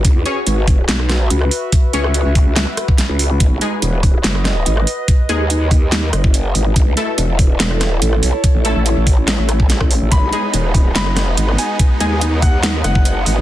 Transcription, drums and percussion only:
0.05 kick loud
0.05 closed hi-hat medium
0.26 closed hi-hat medium
0.47 closed hi-hat medium
0.68 kick loud
0.68 open hi-hat medium
0.89 snare loud
0.89 closed hi-hat medium
1.00 cross-stick soft
1.09 cross-stick medium
1.09 snare medium
1.09 closed hi-hat medium
1.30 closed hi-hat medium
1.41 cross-stick medium
1.51 open hi-hat medium
1.72 kick loud
1.72 closed hi-hat medium
1.93 closed hi-hat medium
2.04 cross-stick medium
2.14 closed hi-hat medium
2.35 kick loud
2.35 open hi-hat medium
2.56 snare loud
2.56 closed hi-hat medium
2.77 cross-stick medium
2.77 closed hi-hat medium
2.88 kick loud
2.98 snare medium
2.98 closed hi-hat medium
3.19 open hi-hat medium
3.40 kick loud
3.40 closed hi-hat medium
3.61 closed hi-hat medium
3.82 closed hi-hat medium
4.03 kick loud
4.03 open hi-hat medium
4.24 snare loud
4.24 closed hi-hat medium
4.35 cross-stick medium
4.45 cross-stick medium
4.45 snare medium
4.45 closed hi-hat medium
4.66 closed hi-hat medium
4.77 cross-stick medium
4.87 open hi-hat medium
5.08 kick loud
5.08 closed hi-hat medium
5.29 closed hi-hat medium
5.50 closed hi-hat medium
5.71 kick loud
5.71 open hi-hat medium
5.92 snare loud
5.92 closed hi-hat medium
6.13 cross-stick medium
6.13 closed hi-hat medium
6.24 kick loud
6.34 closed hi-hat medium
6.55 open hi-hat medium
6.76 kick loud
6.76 closed hi-hat medium
6.97 closed hi-hat medium
7.18 closed hi-hat medium
7.39 kick loud
7.39 open hi-hat medium
7.60 snare loud
7.60 closed hi-hat medium
7.71 cross-stick medium
7.81 cross-stick medium
7.81 snare medium
7.81 closed hi-hat medium
8.02 closed hi-hat medium
8.13 cross-stick medium
8.23 open hi-hat loud
8.44 kick loud
8.44 closed hi-hat medium
8.65 closed hi-hat medium
8.86 closed hi-hat medium
9.07 kick loud
9.07 open hi-hat medium
9.28 snare loud
9.28 closed hi-hat medium
9.49 cross-stick medium
9.49 closed hi-hat medium
9.60 kick loud
9.70 snare medium
9.70 closed hi-hat medium
9.81 kick medium
9.81 cross-stick medium
9.91 open hi-hat loud
10.12 kick loud
10.12 closed hi-hat medium
10.33 closed hi-hat medium
10.54 closed hi-hat medium
10.75 kick loud
10.75 open hi-hat medium
10.96 snare loud
10.96 closed hi-hat medium
11.07 cross-stick medium
11.16 cross-stick medium
11.16 snare medium
11.16 closed hi-hat medium
11.37 closed hi-hat medium
11.49 cross-stick medium
11.59 open hi-hat loud
11.79 kick loud
11.79 closed hi-hat medium
12.00 closed hi-hat medium
12.21 closed hi-hat medium
12.42 kick loud
12.42 open hi-hat medium
12.63 snare loud
12.63 closed hi-hat medium
12.84 cross-stick medium
12.84 closed hi-hat medium
12.95 kick loud
13.05 closed hi-hat medium
13.26 open hi-hat medium

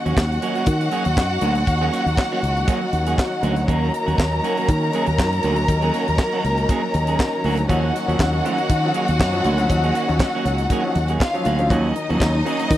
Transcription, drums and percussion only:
0.06 closed hi-hat soft
0.17 kick loud
0.17 snare loud
0.17 clap medium
0.32 closed hi-hat soft
0.42 closed hi-hat medium
0.55 closed hi-hat soft
0.66 kick loud
0.66 closed hi-hat medium
0.81 closed hi-hat soft
0.91 closed hi-hat medium
1.05 closed hi-hat medium
1.17 kick loud
1.17 snare loud
1.17 clap medium
1.41 closed hi-hat medium
1.55 closed hi-hat soft
1.67 kick loud
1.67 closed hi-hat medium
1.93 snare soft
1.93 closed hi-hat medium
2.07 closed hi-hat soft
2.17 kick loud
2.17 snare loud
2.17 clap medium
2.44 closed hi-hat medium
2.57 closed hi-hat soft
2.68 kick loud
2.68 closed hi-hat medium
2.93 closed hi-hat medium
3.06 closed hi-hat medium
3.18 kick loud
3.18 snare loud
3.18 clap medium
3.43 closed hi-hat medium
3.56 closed hi-hat soft
3.68 kick medium
3.68 closed hi-hat medium
3.94 closed hi-hat medium
4.08 closed hi-hat soft
4.18 kick loud
4.18 snare loud
4.18 clap medium
4.44 closed hi-hat medium
4.57 closed hi-hat soft
4.69 kick loud
4.69 closed hi-hat medium
4.93 closed hi-hat medium
5.06 closed hi-hat medium
5.18 kick loud
5.18 snare loud
5.18 clap loud
5.33 closed hi-hat soft
5.43 closed hi-hat medium
5.56 closed hi-hat soft
5.68 kick loud
5.68 closed hi-hat medium
5.82 closed hi-hat soft
5.94 closed hi-hat medium
6.08 closed hi-hat soft
6.18 kick loud
6.18 snare loud
6.18 clap medium
6.45 closed hi-hat medium
6.58 closed hi-hat soft
6.69 kick loud
6.69 closed hi-hat medium
6.94 closed hi-hat medium
7.07 closed hi-hat soft
7.19 kick medium
7.19 snare loud
7.19 clap loud
7.44 open hi-hat medium
7.57 closed hi-hat soft
7.69 kick medium
7.69 closed hi-hat medium
7.96 snare soft
7.96 closed hi-hat medium
8.09 closed hi-hat soft
8.19 kick loud
8.19 snare loud
8.19 clap medium
8.46 closed hi-hat medium
8.58 closed hi-hat soft
8.70 kick loud
8.70 closed hi-hat medium
8.94 closed hi-hat medium
9.08 closed hi-hat medium
9.20 kick loud
9.20 snare loud
9.20 clap medium
9.34 closed hi-hat soft
9.44 closed hi-hat medium
9.58 closed hi-hat medium
9.70 kick loud
9.70 closed hi-hat medium
9.84 closed hi-hat soft
9.95 closed hi-hat medium
10.09 closed hi-hat soft
10.19 kick loud
10.19 snare loud
10.19 clap medium
10.46 closed hi-hat medium
10.58 closed hi-hat soft
10.70 kick loud
10.70 closed hi-hat medium
10.95 closed hi-hat medium
11.08 closed hi-hat medium
11.20 kick loud
11.20 snare loud
11.20 clap loud
11.35 closed hi-hat soft
11.45 closed hi-hat medium
11.59 closed hi-hat soft
11.70 kick loud
11.70 closed hi-hat medium
11.96 closed hi-hat medium
12.10 closed hi-hat soft
12.20 kick loud
12.20 snare loud
12.20 clap loud
12.46 closed hi-hat medium
12.59 closed hi-hat soft
12.71 kick loud
12.71 closed hi-hat medium

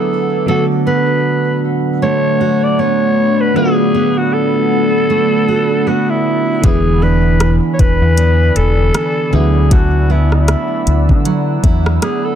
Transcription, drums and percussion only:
6.64 kick loud
6.64 closed hi-hat medium
7.40 cross-stick loud
7.40 closed hi-hat medium
7.79 kick medium
7.79 closed hi-hat medium
8.17 closed hi-hat medium
8.56 closed hi-hat medium
8.94 cross-stick loud
8.94 closed hi-hat medium
9.71 kick loud
9.71 closed hi-hat medium
10.32 cross-stick medium
10.48 cross-stick loud
10.48 closed hi-hat medium
10.87 closed hi-hat medium
11.09 kick medium
11.25 closed hi-hat medium
11.64 kick medium
11.64 closed hi-hat medium
11.86 cross-stick loud
12.02 cross-stick loud
12.02 closed hi-hat medium

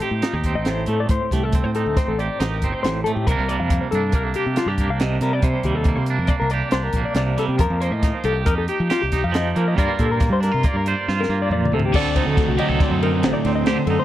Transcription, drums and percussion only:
0.00 snare soft
0.00 closed hi-hat medium
0.22 snare loud
0.22 closed hi-hat medium
0.44 kick medium
0.44 closed hi-hat medium
0.65 snare loud
0.65 closed hi-hat medium
0.86 closed hi-hat medium
1.09 kick loud
1.09 closed hi-hat medium
1.31 kick medium
1.31 snare soft
1.31 closed hi-hat medium
1.52 kick medium
1.52 closed hi-hat medium
1.75 closed hi-hat medium
1.97 kick loud
1.97 snare soft
1.97 closed hi-hat medium
2.19 closed hi-hat soft
2.40 snare loud
2.40 closed hi-hat medium
2.62 kick medium
2.62 closed hi-hat medium
2.84 snare loud
2.84 closed hi-hat medium
3.06 closed hi-hat medium
3.27 kick loud
3.27 closed hi-hat medium
3.49 closed hi-hat medium
3.70 kick medium
3.70 closed hi-hat medium
3.92 closed hi-hat medium
4.12 kick medium
4.12 closed hi-hat medium
4.34 closed hi-hat medium
4.56 snare loud
4.56 closed hi-hat medium
4.78 kick medium
4.78 closed hi-hat medium
5.00 snare loud
5.00 closed hi-hat medium
5.21 snare soft
5.21 closed hi-hat medium
5.42 kick loud
5.42 closed hi-hat medium
5.63 kick medium
5.63 closed hi-hat medium
5.84 kick loud
5.84 closed hi-hat medium
6.06 closed hi-hat medium
6.27 kick loud
6.27 closed hi-hat medium
6.50 closed hi-hat medium
6.71 snare loud
6.71 closed hi-hat medium
6.93 kick medium
6.93 closed hi-hat medium
7.15 snare loud
7.15 closed hi-hat medium
7.38 snare soft
7.38 closed hi-hat medium
7.59 kick loud
7.59 closed hi-hat medium
7.82 closed hi-hat medium
8.03 kick loud
8.03 snare soft
8.03 closed hi-hat medium
8.24 closed hi-hat medium
8.46 kick loud
8.46 closed hi-hat medium
8.68 closed hi-hat medium
8.90 snare loud
8.90 closed hi-hat medium
9.12 kick medium
9.12 snare soft
9.12 closed hi-hat medium
9.34 snare loud
9.34 closed hi-hat medium
9.56 closed hi-hat medium
9.78 kick loud
9.78 closed hi-hat medium
9.99 kick medium
9.99 closed hi-hat medium
10.20 kick loud
10.20 snare soft
10.20 closed hi-hat medium
10.43 snare soft
10.43 closed hi-hat medium
10.63 kick loud
10.63 closed hi-hat medium
10.86 closed hi-hat medium
11.08 snare medium
11.23 snare medium
11.51 mid tom medium
11.65 mid tom medium
11.79 floor tom medium
11.94 kick loud
11.94 crash loud
12.16 kick medium
12.16 ride medium
12.37 kick loud
12.37 snare soft
12.37 ride medium
12.58 ride medium
12.80 kick loud
12.80 snare soft
12.80 ride medium
13.03 ride medium
13.23 snare loud
13.23 ride loud
13.45 snare soft
13.45 ride medium
13.66 snare loud
13.66 ride loud
13.87 ride medium

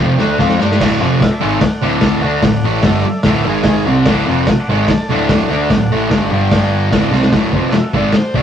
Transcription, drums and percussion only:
0.18 snare medium
0.39 kick loud
0.39 snare medium
0.49 snare medium
0.60 snare medium
0.71 snare medium
0.81 kick loud
0.81 snare loud
0.81 crash loud
1.21 kick loud
1.21 snare loud
1.21 open hi-hat medium
1.61 kick loud
1.61 snare loud
1.61 open hi-hat medium
2.01 kick loud
2.01 snare loud
2.01 open hi-hat medium
2.42 kick loud
2.42 snare loud
2.42 open hi-hat medium
2.83 kick loud
2.83 snare loud
2.83 open hi-hat medium
3.23 kick loud
3.23 snare loud
3.23 open hi-hat medium
3.63 kick loud
3.63 snare loud
3.63 open hi-hat medium
4.06 kick loud
4.06 snare loud
4.06 open hi-hat medium
4.47 kick loud
4.47 snare loud
4.47 open hi-hat medium
4.88 kick loud
4.88 snare loud
4.88 open hi-hat medium
5.29 kick loud
5.29 snare loud
5.29 open hi-hat medium
5.70 kick loud
5.70 snare loud
5.70 open hi-hat medium
6.11 kick loud
6.11 snare loud
6.11 open hi-hat medium
6.51 kick loud
6.51 snare loud
6.51 open hi-hat medium
6.92 kick loud
6.92 snare loud
6.92 open hi-hat medium
7.13 snare medium
7.22 snare medium
7.33 kick loud
7.33 snare loud
7.33 open hi-hat medium
7.53 kick loud
7.72 snare loud
7.72 open hi-hat medium
7.93 kick loud
8.13 snare loud
8.13 open hi-hat medium
8.34 kick loud

